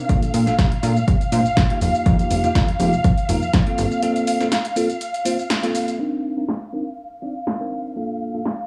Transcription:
Already playing: string section F5
0.09 analog synth bass A#1, tine electric piano A#3 D4 F4 A4, kick, closed hi-hat, shaker
0.23 closed hi-hat, shaker
0.33 analog synth bass A#2, open hi-hat, shaker
0.47 analog synth bass A#1, tine electric piano A#3 D4 F4 A4, snare, closed hi-hat, shaker
0.59 analog synth bass A#1, kick, snare, closed hi-hat, shaker
0.72 closed hi-hat
0.83 analog synth bass A#2, tine electric piano A#3 D4 F4 A4, open hi-hat, shaker
0.96 shaker
1.08 analog synth bass A#1, kick, closed hi-hat, shaker
1.21 analog synth bass A#2, closed hi-hat, shaker
1.32 analog synth bass A#2, tine electric piano A#3 D4 F4 C5, open hi-hat, shaker
1.46 analog synth bass A#1, shaker
1.57 analog synth bass A#1, kick, snare, closed hi-hat, shaker
1.70 tine electric piano A#3 D#4 F4 G4, closed hi-hat
1.81 analog synth bass F1, open hi-hat, shaker
1.94 shaker
2.06 analog synth bass F2, tine electric piano A#3 D#4 F4 G4, kick, closed hi-hat, shaker
2.19 closed hi-hat, shaker
2.31 analog synth bass F1, open hi-hat, shaker
2.44 analog synth bass F2, tine electric piano A#3 D#4 F4 G4, closed hi-hat, shaker
2.55 analog synth bass F2, kick, snare, closed hi-hat, shaker
2.68 closed hi-hat
2.80 analog synth bass F1, tine electric piano A#3 D#4 F4 G4, open hi-hat, shaker
2.93 shaker
3.04 analog synth bass F2, kick, closed hi-hat, shaker
3.18 closed hi-hat, shaker
3.29 analog synth bass F1, tine electric piano A#3 D#4 F4 A#4, open hi-hat, shaker
3.42 analog synth bass F2, shaker
3.53 analog synth bass F2, kick, snare, closed hi-hat, shaker
3.66 tine electric piano A#3 C4 F4 A4, closed hi-hat
3.78 analog synth bass G1, open hi-hat, shaker
3.91 shaker
4.02 tine electric piano A#3 C4 F4 A4, closed hi-hat, shaker
4.16 closed hi-hat, shaker
4.27 open hi-hat, shaker
4.40 tine electric piano A#3 C4 F4 A4, snare, closed hi-hat, shaker
4.52 snare, closed hi-hat, shaker
4.65 closed hi-hat, shaker
4.76 tine electric piano A#3 C4 F4 A4, open hi-hat, shaker
4.90 closed hi-hat, shaker
5.01 closed hi-hat, shaker
5.14 closed hi-hat, shaker
5.25 tine electric piano A#3 C4 F4 C5, open hi-hat, shaker
5.39 shaker
5.50 snare, closed hi-hat, shaker
5.63 tine electric piano A#3 C4 F4 A4, closed hi-hat, shaker
5.75 open hi-hat, shaker
5.88 closed hi-hat, shaker
5.99 tine electric piano C4 D4 D#4 A#4, string section F5, crash
6.37 tine electric piano C4 D4 D#4 A#4
6.49 snare
6.73 tine electric piano C4 D4 D#4 A#4
7.22 tine electric piano C4 D4 D#4 D5
7.47 snare
7.60 tine electric piano C4 D4 D#4 A#4
7.96 tine electric piano A#3 D4 F4 A4
8.34 tine electric piano A#3 D4 F4 A4
8.45 snare

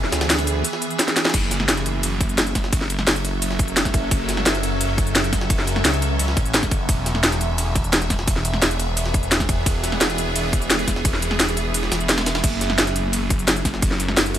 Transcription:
Already playing: detuned saw bass E1, synth drone E3 B3 G#4 E5
0.04 snare
0.12 detuned saw bass D2, snare, closed hi-hat, ride
0.21 snare, ride
0.30 snare, closed hi-hat, open hi-hat
0.38 snare, closed hi-hat
0.47 closed hi-hat, ride
0.64 closed hi-hat, ride
0.73 snare
0.82 closed hi-hat, ride
0.90 closed hi-hat
0.99 snare, closed hi-hat, ride
1.08 snare, closed hi-hat
1.16 snare, closed hi-hat, ride
1.25 snare, ride
1.30 snare, ride
1.34 detuned saw bass F#1, synth drone F#3 C#4 A4 E5, kick, closed hi-hat, crash, ride
1.51 snare, closed hi-hat, ride
1.60 snare
1.69 detuned saw bass F#1, snare, closed hi-hat, ride
1.77 snare, closed hi-hat
1.86 closed hi-hat, ride
2.03 closed hi-hat, ride
2.21 kick, closed hi-hat, ride
2.29 closed hi-hat
2.38 snare, closed hi-hat, ride
2.47 closed hi-hat
2.55 detuned saw bass F#1, kick, snare, closed hi-hat, ride
2.64 snare
2.73 detuned saw bass F#1, kick, closed hi-hat, ride
2.81 snare
2.90 closed hi-hat, ride
2.99 snare
3.07 detuned saw bass F#1, snare, closed hi-hat, open hi-hat, ride
3.16 closed hi-hat
3.25 closed hi-hat, ride
3.42 closed hi-hat, ride
3.51 snare
3.59 kick, closed hi-hat, ride
3.68 closed hi-hat
3.77 snare, closed hi-hat, ride
3.85 kick, snare, closed hi-hat
3.94 detuned saw bass F#1, kick, closed hi-hat, ride
4.11 detuned saw bass F#1, kick, closed hi-hat, ride
4.29 snare, closed hi-hat, ride
4.37 snare
4.46 detuned saw bass F#1, snare, closed hi-hat, ride
4.55 snare, closed hi-hat
4.63 closed hi-hat, ride
4.81 closed hi-hat, ride
4.98 kick, closed hi-hat, ride
5.07 closed hi-hat
5.15 snare, closed hi-hat, ride
5.24 closed hi-hat
5.33 detuned saw bass F#1, kick, snare, closed hi-hat, ride
5.41 snare
5.50 detuned saw bass F#1, kick, closed hi-hat, ride
5.59 snare
5.67 closed hi-hat, ride
5.76 snare
5.85 detuned saw bass C#2, snare, closed hi-hat, open hi-hat, ride
5.93 closed hi-hat
6.02 closed hi-hat, ride
6.19 closed hi-hat, ride
6.28 snare
6.37 detuned saw bass A1, kick, closed hi-hat, ride
6.46 closed hi-hat
6.54 snare, closed hi-hat, ride
6.63 kick, snare, closed hi-hat
6.71 detuned saw bass F#1, kick, closed hi-hat, ride
6.89 detuned saw bass E1, synth drone E3 B3 G#4, kick, closed hi-hat, ride
7.06 snare, closed hi-hat, ride
7.15 snare
7.23 detuned saw bass E1, snare, closed hi-hat, ride
7.32 snare, closed hi-hat
7.41 closed hi-hat, ride
7.58 closed hi-hat, ride
7.75 kick, closed hi-hat, ride
7.84 closed hi-hat
7.93 snare, closed hi-hat, ride
8.02 closed hi-hat
8.10 detuned saw bass E1, kick, snare, closed hi-hat, ride
8.19 snare
8.28 detuned saw bass E1, kick, closed hi-hat, ride
8.36 snare
8.45 closed hi-hat, ride
8.54 snare
8.62 detuned saw bass E1, snare, closed hi-hat, open hi-hat, ride
8.71 closed hi-hat
8.80 closed hi-hat, ride
8.97 closed hi-hat, ride
9.06 snare
9.14 kick, closed hi-hat, ride
9.23 closed hi-hat
9.32 snare, closed hi-hat, ride
9.40 kick, snare, closed hi-hat
9.49 detuned saw bass E1, kick, closed hi-hat, ride
9.66 detuned saw bass E1, kick, closed hi-hat, ride
9.84 snare, closed hi-hat, ride
9.92 snare
10.01 detuned saw bass E1, snare, closed hi-hat, ride
10.10 snare, closed hi-hat
10.18 closed hi-hat, ride
10.36 closed hi-hat, ride
10.53 kick, closed hi-hat, ride
10.62 closed hi-hat
10.70 snare, closed hi-hat, ride
10.79 closed hi-hat
10.88 detuned saw bass E1, kick, snare, closed hi-hat, ride
10.96 snare
11.05 detuned saw bass E1, kick, closed hi-hat, ride
11.14 snare
11.22 closed hi-hat, ride
11.31 snare
11.40 detuned saw bass E1, snare, closed hi-hat, open hi-hat, ride
11.48 closed hi-hat
11.57 closed hi-hat, ride
11.74 closed hi-hat, ride
11.83 snare
11.92 detuned saw bass E1, snare, closed hi-hat, ride
12.00 closed hi-hat
12.09 snare, closed hi-hat, ride
12.18 snare, closed hi-hat, ride
12.26 snare, closed hi-hat, ride
12.35 snare, ride
12.44 detuned saw bass F#1, synth drone F#3 C#4 A4 E5, kick, closed hi-hat, ride, crash
12.61 snare, closed hi-hat, ride
12.70 snare
12.78 detuned saw bass F#1, snare, closed hi-hat, ride
12.87 snare, closed hi-hat
12.96 closed hi-hat, ride
13.13 closed hi-hat, ride
13.30 kick, closed hi-hat, ride
13.39 closed hi-hat
13.48 snare, closed hi-hat, ride
13.56 closed hi-hat
13.65 detuned saw bass F#1, kick, snare, closed hi-hat, ride
13.74 snare
13.82 detuned saw bass F#1, kick, closed hi-hat, ride
13.91 snare
14.00 closed hi-hat, ride
14.09 snare
14.17 detuned saw bass F#1, snare, closed hi-hat, open hi-hat, ride
14.26 closed hi-hat
14.34 closed hi-hat, ride

